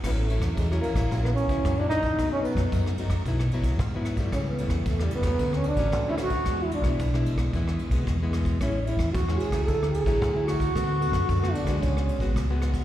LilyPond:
<<
  \new Staff \with { instrumentName = "Trombone" } { \time 4/4 \key a \major \tempo 4 = 112 b16 a8. gis16 fis16 bes8. b16 cis'8. d'16 dis'8~ | dis'16 cis'16 b4 r2 r8 | cis'16 b8. a16 g16 b8. cis'16 d'8. e'16 fis'8~ | fis'16 e'16 d'4 r2 r8 |
cis'8 e'8 fis'8 gis'8 a'8 gis'4 fis'8~ | fis'4. d'8 cis'4 r4 | }
  \new Staff \with { instrumentName = "Nylon-string guitar" } { \time 4/4 \key a \major << { <fis cis' e'>8 <fis cis' e'>8. <fis cis' e'>8 <fis cis' e'>4 <fis cis' e'>8 <fis cis' e'>8. | <fis a dis'>8. <fis a dis'>8. <fis a dis'>8 <fis b e'>16 r16 <fis b e'>8 r16 <fis b e'>8 <g a e'>16~ | <g a e'>8 <g a e'>8 r16 <g a e'>8 <fis a cis'>4 <fis a cis'>8 <fis a cis'>8. | <gis b e'>8. <gis b e'>8 <gis b e'>8. <gis b e'>8. <gis b e'>8 <gis b e'>8. |
<gis cis' e'>16 r16 <gis cis' e'>8. <gis cis' e'>8 <fis a e'>4 <fis a e'>8 <fis a e'>8. | <a b fis'>8 <a b fis'>8. <a b fis'>8 <gis b fis'>4 <gis b fis'>8 <gis b fis'>8. | } \\ { a,4 e4 ais,4 ais,4 | b,4 fis,4 b,4 r4 | cis4 cis4 d4 a,4 | e4 b,4 e4 b,4 |
a,4 e4 d4 a,4 | d4 d4 cis4 gis,4 | } >> }
  \new Staff \with { instrumentName = "Fingered electric bass" } { \clef bass \time 4/4 \key a \major a,,8. e,16 e,8 r16 a,,16 ais,,8 r16 cis,16 fis,4 | b,,8. fis,16 fis,8 r16 fis,16 b,,8 r16 b,,16 gis,4 | cis,8. e,16 e,8 r16 e,16 d,8 r16 a,,16 d,4 | e,8. b,,16 b,,8 r16 b,,16 e,8 r16 b,,16 e,4 |
a,,8. e,16 e,8 r16 cis,16 d,8 r16 a,,16 d,4 | d,8. fis,16 fis,8 r16 d,16 cis,8 r16 gis,,16 cis,4 | }
  \new DrumStaff \with { instrumentName = "Drums" } \drummode { \time 4/4 <cymc bd ss>8 cymr16 <bd cymr ss>16 <bd cymr>16 ss16 cymr16 <bd cymr ss>16 <bd cymr>16 ss16 cymr16 <bd cymr>16 <bd cymr ss>8 <cymr ss>16 <bd cymr>16 | <bd cymr ss>8 cymr16 <bd cymr ss>16 <bd cymr>16 ss16 cymr16 <bd cymr ss>16 <bd cymr>16 ss16 cymr16 <bd cymr>16 <bd cymr ss>8 <cymr ss>16 <bd cymr>16 | <bd cymr ss>8 cymr16 <bd cymr ss>16 <bd cymr>16 ss16 cymr16 <bd cymr ss>16 <bd cymr>16 ss16 cymr16 <bd cymr>16 <bd cymr ss>8 <cymr ss>16 <bd cymr>16 | <bd cymr ss>8 cymr16 <bd cymr ss>16 <bd cymr>16 ss16 cymr16 <bd cymr ss>16 <bd cymr>16 ss16 cymr16 <bd cymr>16 <bd cymr ss>8 <cymr ss>16 <bd cymr>16 |
<bd cymr ss>8 cymr16 <bd cymr ss>16 <bd cymr>16 ss16 cymr16 <bd cymr ss>16 <bd cymr>16 ss16 cymr16 <bd cymr>16 <bd cymr ss>8 <cymr ss>16 <bd cymr>16 | <bd cymr ss>8 cymr16 <bd cymr ss>16 <bd cymr>16 ss16 cymr16 <bd cymr ss>16 <bd cymr>16 ss16 cymr16 <bd cymr>16 <bd cymr ss>8 <cymr ss>16 <bd cymr>16 | }
>>